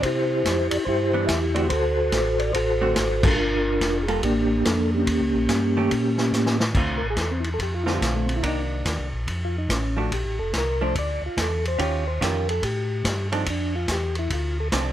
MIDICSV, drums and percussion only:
0, 0, Header, 1, 2, 480
1, 0, Start_track
1, 0, Key_signature, -1, "minor"
1, 0, Tempo, 419874
1, 31, Time_signature, 4, 2, 24, 8
1, 17063, End_track
2, 0, Start_track
2, 0, Title_t, "Drums"
2, 34, Note_on_c, 9, 36, 26
2, 36, Note_on_c, 9, 51, 65
2, 148, Note_off_c, 9, 36, 0
2, 150, Note_off_c, 9, 51, 0
2, 512, Note_on_c, 9, 36, 15
2, 518, Note_on_c, 9, 38, 61
2, 519, Note_on_c, 9, 44, 55
2, 519, Note_on_c, 9, 51, 59
2, 626, Note_off_c, 9, 36, 0
2, 633, Note_off_c, 9, 38, 0
2, 634, Note_off_c, 9, 44, 0
2, 634, Note_off_c, 9, 51, 0
2, 813, Note_on_c, 9, 51, 72
2, 927, Note_off_c, 9, 51, 0
2, 989, Note_on_c, 9, 36, 23
2, 1103, Note_off_c, 9, 36, 0
2, 1467, Note_on_c, 9, 36, 23
2, 1467, Note_on_c, 9, 38, 69
2, 1469, Note_on_c, 9, 44, 64
2, 1469, Note_on_c, 9, 51, 68
2, 1582, Note_off_c, 9, 36, 0
2, 1582, Note_off_c, 9, 38, 0
2, 1583, Note_off_c, 9, 44, 0
2, 1583, Note_off_c, 9, 51, 0
2, 1779, Note_on_c, 9, 51, 51
2, 1893, Note_off_c, 9, 51, 0
2, 1943, Note_on_c, 9, 51, 60
2, 1945, Note_on_c, 9, 36, 22
2, 2057, Note_off_c, 9, 51, 0
2, 2060, Note_off_c, 9, 36, 0
2, 2424, Note_on_c, 9, 38, 61
2, 2425, Note_on_c, 9, 36, 22
2, 2425, Note_on_c, 9, 44, 44
2, 2425, Note_on_c, 9, 51, 60
2, 2539, Note_off_c, 9, 36, 0
2, 2539, Note_off_c, 9, 38, 0
2, 2540, Note_off_c, 9, 44, 0
2, 2540, Note_off_c, 9, 51, 0
2, 2737, Note_on_c, 9, 51, 44
2, 2852, Note_off_c, 9, 51, 0
2, 2905, Note_on_c, 9, 36, 18
2, 2909, Note_on_c, 9, 51, 63
2, 3019, Note_off_c, 9, 36, 0
2, 3023, Note_off_c, 9, 51, 0
2, 3381, Note_on_c, 9, 38, 70
2, 3382, Note_on_c, 9, 44, 58
2, 3382, Note_on_c, 9, 51, 68
2, 3385, Note_on_c, 9, 36, 19
2, 3495, Note_off_c, 9, 38, 0
2, 3496, Note_off_c, 9, 44, 0
2, 3496, Note_off_c, 9, 51, 0
2, 3499, Note_off_c, 9, 36, 0
2, 3696, Note_on_c, 9, 49, 87
2, 3697, Note_on_c, 9, 36, 96
2, 3811, Note_off_c, 9, 36, 0
2, 3811, Note_off_c, 9, 49, 0
2, 4350, Note_on_c, 9, 36, 19
2, 4356, Note_on_c, 9, 38, 59
2, 4357, Note_on_c, 9, 44, 43
2, 4357, Note_on_c, 9, 51, 58
2, 4465, Note_off_c, 9, 36, 0
2, 4470, Note_off_c, 9, 38, 0
2, 4472, Note_off_c, 9, 44, 0
2, 4472, Note_off_c, 9, 51, 0
2, 4667, Note_on_c, 9, 51, 47
2, 4782, Note_off_c, 9, 51, 0
2, 4834, Note_on_c, 9, 36, 23
2, 4835, Note_on_c, 9, 51, 66
2, 4948, Note_off_c, 9, 36, 0
2, 4949, Note_off_c, 9, 51, 0
2, 5316, Note_on_c, 9, 36, 20
2, 5319, Note_on_c, 9, 38, 70
2, 5320, Note_on_c, 9, 44, 58
2, 5320, Note_on_c, 9, 51, 66
2, 5430, Note_off_c, 9, 36, 0
2, 5433, Note_off_c, 9, 38, 0
2, 5434, Note_off_c, 9, 44, 0
2, 5434, Note_off_c, 9, 51, 0
2, 5795, Note_on_c, 9, 36, 28
2, 5797, Note_on_c, 9, 51, 66
2, 5909, Note_off_c, 9, 36, 0
2, 5911, Note_off_c, 9, 51, 0
2, 6272, Note_on_c, 9, 38, 59
2, 6273, Note_on_c, 9, 44, 54
2, 6273, Note_on_c, 9, 51, 60
2, 6276, Note_on_c, 9, 36, 16
2, 6386, Note_off_c, 9, 38, 0
2, 6387, Note_off_c, 9, 44, 0
2, 6387, Note_off_c, 9, 51, 0
2, 6390, Note_off_c, 9, 36, 0
2, 6757, Note_on_c, 9, 36, 19
2, 6757, Note_on_c, 9, 51, 64
2, 6871, Note_off_c, 9, 36, 0
2, 6871, Note_off_c, 9, 51, 0
2, 7064, Note_on_c, 9, 38, 55
2, 7178, Note_off_c, 9, 38, 0
2, 7241, Note_on_c, 9, 38, 44
2, 7242, Note_on_c, 9, 44, 56
2, 7355, Note_off_c, 9, 38, 0
2, 7356, Note_off_c, 9, 44, 0
2, 7388, Note_on_c, 9, 38, 59
2, 7502, Note_off_c, 9, 38, 0
2, 7548, Note_on_c, 9, 38, 86
2, 7662, Note_off_c, 9, 38, 0
2, 7713, Note_on_c, 9, 36, 70
2, 7713, Note_on_c, 9, 49, 66
2, 7827, Note_off_c, 9, 36, 0
2, 7828, Note_off_c, 9, 49, 0
2, 8191, Note_on_c, 9, 38, 55
2, 8192, Note_on_c, 9, 44, 41
2, 8192, Note_on_c, 9, 51, 52
2, 8194, Note_on_c, 9, 36, 21
2, 8305, Note_off_c, 9, 38, 0
2, 8306, Note_off_c, 9, 44, 0
2, 8306, Note_off_c, 9, 51, 0
2, 8308, Note_off_c, 9, 36, 0
2, 8508, Note_on_c, 9, 51, 44
2, 8623, Note_off_c, 9, 51, 0
2, 8677, Note_on_c, 9, 36, 23
2, 8683, Note_on_c, 9, 51, 60
2, 8791, Note_off_c, 9, 36, 0
2, 8797, Note_off_c, 9, 51, 0
2, 8995, Note_on_c, 9, 38, 46
2, 9109, Note_off_c, 9, 38, 0
2, 9159, Note_on_c, 9, 36, 20
2, 9169, Note_on_c, 9, 38, 63
2, 9170, Note_on_c, 9, 44, 54
2, 9170, Note_on_c, 9, 51, 55
2, 9274, Note_off_c, 9, 36, 0
2, 9283, Note_off_c, 9, 38, 0
2, 9284, Note_off_c, 9, 44, 0
2, 9284, Note_off_c, 9, 51, 0
2, 9475, Note_on_c, 9, 51, 47
2, 9590, Note_off_c, 9, 51, 0
2, 9638, Note_on_c, 9, 36, 24
2, 9642, Note_on_c, 9, 51, 61
2, 9752, Note_off_c, 9, 36, 0
2, 9757, Note_off_c, 9, 51, 0
2, 10119, Note_on_c, 9, 36, 20
2, 10121, Note_on_c, 9, 38, 52
2, 10122, Note_on_c, 9, 44, 46
2, 10122, Note_on_c, 9, 51, 57
2, 10234, Note_off_c, 9, 36, 0
2, 10236, Note_off_c, 9, 38, 0
2, 10237, Note_off_c, 9, 44, 0
2, 10237, Note_off_c, 9, 51, 0
2, 10601, Note_on_c, 9, 36, 25
2, 10604, Note_on_c, 9, 51, 54
2, 10716, Note_off_c, 9, 36, 0
2, 10719, Note_off_c, 9, 51, 0
2, 11082, Note_on_c, 9, 36, 23
2, 11086, Note_on_c, 9, 38, 67
2, 11087, Note_on_c, 9, 44, 59
2, 11087, Note_on_c, 9, 51, 65
2, 11196, Note_off_c, 9, 36, 0
2, 11200, Note_off_c, 9, 38, 0
2, 11201, Note_off_c, 9, 44, 0
2, 11201, Note_off_c, 9, 51, 0
2, 11564, Note_on_c, 9, 36, 19
2, 11567, Note_on_c, 9, 51, 59
2, 11678, Note_off_c, 9, 36, 0
2, 11682, Note_off_c, 9, 51, 0
2, 12040, Note_on_c, 9, 36, 16
2, 12043, Note_on_c, 9, 38, 59
2, 12044, Note_on_c, 9, 44, 44
2, 12044, Note_on_c, 9, 51, 52
2, 12155, Note_off_c, 9, 36, 0
2, 12157, Note_off_c, 9, 38, 0
2, 12158, Note_off_c, 9, 44, 0
2, 12158, Note_off_c, 9, 51, 0
2, 12521, Note_on_c, 9, 36, 26
2, 12523, Note_on_c, 9, 51, 57
2, 12635, Note_off_c, 9, 36, 0
2, 12637, Note_off_c, 9, 51, 0
2, 13002, Note_on_c, 9, 36, 21
2, 13003, Note_on_c, 9, 38, 68
2, 13004, Note_on_c, 9, 44, 60
2, 13004, Note_on_c, 9, 51, 67
2, 13116, Note_off_c, 9, 36, 0
2, 13117, Note_off_c, 9, 38, 0
2, 13118, Note_off_c, 9, 44, 0
2, 13118, Note_off_c, 9, 51, 0
2, 13322, Note_on_c, 9, 51, 50
2, 13436, Note_off_c, 9, 51, 0
2, 13481, Note_on_c, 9, 36, 17
2, 13482, Note_on_c, 9, 51, 61
2, 13595, Note_off_c, 9, 36, 0
2, 13596, Note_off_c, 9, 51, 0
2, 13961, Note_on_c, 9, 36, 21
2, 13970, Note_on_c, 9, 38, 55
2, 13971, Note_on_c, 9, 44, 46
2, 13971, Note_on_c, 9, 51, 66
2, 14075, Note_off_c, 9, 36, 0
2, 14084, Note_off_c, 9, 38, 0
2, 14085, Note_off_c, 9, 44, 0
2, 14085, Note_off_c, 9, 51, 0
2, 14276, Note_on_c, 9, 51, 46
2, 14391, Note_off_c, 9, 51, 0
2, 14435, Note_on_c, 9, 36, 23
2, 14437, Note_on_c, 9, 51, 61
2, 14550, Note_off_c, 9, 36, 0
2, 14552, Note_off_c, 9, 51, 0
2, 14914, Note_on_c, 9, 36, 23
2, 14916, Note_on_c, 9, 38, 64
2, 14917, Note_on_c, 9, 44, 51
2, 14917, Note_on_c, 9, 51, 67
2, 15028, Note_off_c, 9, 36, 0
2, 15030, Note_off_c, 9, 38, 0
2, 15031, Note_off_c, 9, 44, 0
2, 15031, Note_off_c, 9, 51, 0
2, 15231, Note_on_c, 9, 51, 50
2, 15346, Note_off_c, 9, 51, 0
2, 15391, Note_on_c, 9, 51, 70
2, 15392, Note_on_c, 9, 36, 23
2, 15506, Note_off_c, 9, 36, 0
2, 15506, Note_off_c, 9, 51, 0
2, 15867, Note_on_c, 9, 38, 52
2, 15868, Note_on_c, 9, 44, 49
2, 15868, Note_on_c, 9, 51, 57
2, 15871, Note_on_c, 9, 36, 21
2, 15981, Note_off_c, 9, 38, 0
2, 15982, Note_off_c, 9, 44, 0
2, 15982, Note_off_c, 9, 51, 0
2, 15985, Note_off_c, 9, 36, 0
2, 16178, Note_on_c, 9, 51, 43
2, 16293, Note_off_c, 9, 51, 0
2, 16351, Note_on_c, 9, 36, 23
2, 16352, Note_on_c, 9, 51, 62
2, 16465, Note_off_c, 9, 36, 0
2, 16466, Note_off_c, 9, 51, 0
2, 16827, Note_on_c, 9, 38, 68
2, 16828, Note_on_c, 9, 44, 56
2, 16828, Note_on_c, 9, 51, 63
2, 16830, Note_on_c, 9, 36, 22
2, 16942, Note_off_c, 9, 38, 0
2, 16943, Note_off_c, 9, 44, 0
2, 16943, Note_off_c, 9, 51, 0
2, 16945, Note_off_c, 9, 36, 0
2, 17063, End_track
0, 0, End_of_file